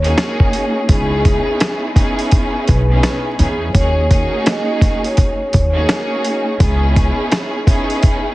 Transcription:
Already playing: D#2 C#5
0.02 A#3 C#4 D#4 F#4 G#4, closed hi-hat
0.18 snare, closed hi-hat
0.40 kick
0.53 closed hi-hat
0.87 C#2 B3 C#4 D#4 E4 G#4, kick, closed hi-hat
1.25 kick, closed hi-hat
1.60 snare, closed hi-hat
1.94 B3 C#4 D#4 E4 G#4, kick, closed hi-hat
2.19 closed hi-hat
2.31 kick, closed hi-hat
2.67 B1 B4, kick, closed hi-hat
2.90 B3 C#4 D#4 E4 G#4
3.03 snare, closed hi-hat
3.38 E2 B3 C#4 D#4 E4 G#4, closed hi-hat
3.73 D#2 A#3 C#4 D#4 F#4 G#4 C#5, kick, closed hi-hat
4.08 A#3 C#4 D#4 F#4 G#4 C#5, kick, closed hi-hat
4.46 snare, closed hi-hat
4.81 kick, snare, closed hi-hat
5.04 C#5, closed hi-hat
5.17 kick, closed hi-hat
5.52 D#2 C#5, kick, closed hi-hat
5.73 A#3 C#4 D#4 F#4 G#4
5.89 snare, closed hi-hat
6.25 closed hi-hat
6.58 C#2 B3 C#4 D#4 E4 G#4, kick, closed hi-hat
6.96 kick, closed hi-hat
7.32 snare, closed hi-hat
7.65 B3 C#4 D#4 E4 G#4, kick, closed hi-hat
7.90 closed hi-hat
8.03 kick, closed hi-hat

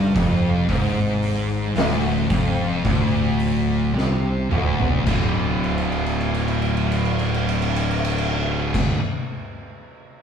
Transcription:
Already playing: G1 G2
0.16 F1 F2, kick, open hi-hat
0.69 G#1 G#2, kick, open hi-hat
1.22 open hi-hat
1.76 D1 D2, snare, open hi-hat
2.30 F1 F2, kick, open hi-hat
2.85 D1 D2, kick, open hi-hat
3.40 open hi-hat
3.93 C2 C3
3.98 snare
4.49 D1 D2, mid tom
4.80 floor tom
5.05 D1 D2 A2 D3, kick, crash
5.64 crash
5.78 ride
5.92 crash
6.06 ride
6.21 crash
6.35 ride
6.48 crash
6.62 ride
6.77 crash
6.92 ride
7.05 crash
7.19 ride
7.34 crash
7.49 ride
7.62 crash
7.76 ride
7.91 crash
8.05 ride
8.18 crash
8.74 kick, crash

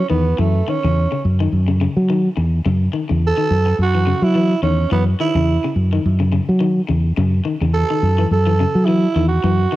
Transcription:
0.10 E2 D#3 B3
0.38 F#2 E3 A3
0.68 D#3 C#4
0.84 E2 C#3
1.12 C#3
1.25 F#2
1.40 D#3
1.52 F#2
1.68 C#3
1.81 C#3
1.96 F#3
2.10 D#3
2.37 E2, muted clean electric guitar stroke
2.66 F#2 C#3
2.93 D#3
3.09 E2 C#3
3.27 A4
3.37 D#3
3.51 F#2
3.66 muted clean electric guitar stroke
3.79 F#2 F#4
3.95 E3
4.07 C#3
4.22 F#3 E4
4.35 E3
4.62 E2 D#3 C#4
4.91 F#2 E3 B3
5.20 D#3 E4
5.35 E2 C#3
5.64 C#3
5.76 F#2
5.93 D#3
6.06 F#2
6.20 C#3
6.33 C#3
6.49 F#3
6.61 D#3
6.89 E2 C#3
7.18 F#2 C#3
7.45 D#3
7.61 E2 C#3
7.74 A4
7.90 D#3
8.03 F#2
8.18 E3
8.31 F#2 A4
8.47 E3
8.60 C#3
8.75 F#3
8.85 E3 E4
9.16 E2 D#3
9.28 F#4
9.44 F#2 E3
9.72 D#3

